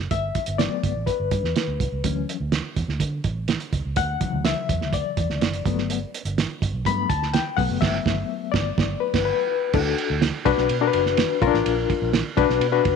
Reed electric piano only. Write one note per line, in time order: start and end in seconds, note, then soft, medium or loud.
0.11 0.61 E5 medium
0.58 0.91 F#3 medium
0.58 0.91 A3 soft
0.58 0.91 B3 medium
0.58 1.04 D5 medium
1.06 2.23 B4 medium
2.04 2.36 E3 soft
2.04 2.36 F#3 soft
2.04 2.37 C#4 medium
3.97 4.46 F#5 loud
4.20 5.62 C#3 medium
4.20 5.61 E3 medium
4.20 5.62 F#3 soft
4.45 4.95 E5 medium
4.94 6.10 D5 medium
5.66 5.97 F#3 medium
5.66 5.98 A3 medium
5.66 5.98 B3 medium
6.86 7.08 F#3 medium
6.86 7.08 A3 soft
6.86 7.08 B3 medium
6.86 7.11 B5 loud
7.09 7.34 A5 medium
7.33 7.58 G5 loud
7.57 9.46 F#3 medium
7.57 9.46 A3 medium
7.57 9.46 B3 medium
7.57 7.68 F#5 loud
7.81 8.49 E5 loud
8.52 9.02 D5 medium
9.00 9.24 B4 medium
9.25 9.70 B4 medium
9.74 10.23 D4 medium
9.74 9.80 E4 soft
9.74 10.23 A4 medium
9.80 10.26 F#4 medium
10.45 10.74 D4 loud
10.45 10.75 F#4 medium
10.45 10.75 B4 loud
10.81 11.39 D4 medium
10.81 11.39 F#4 medium
10.81 10.88 A#4 medium
10.87 11.42 B4 loud
11.42 11.47 C#4 medium
11.42 12.19 F4 loud
11.42 12.19 A#4 loud
11.47 12.21 D4 loud
12.37 12.66 D4 loud
12.37 12.66 F#4 medium
12.37 12.66 B4 loud
12.72 12.96 D4 medium
12.72 12.96 F#4 medium
12.72 12.96 B4 loud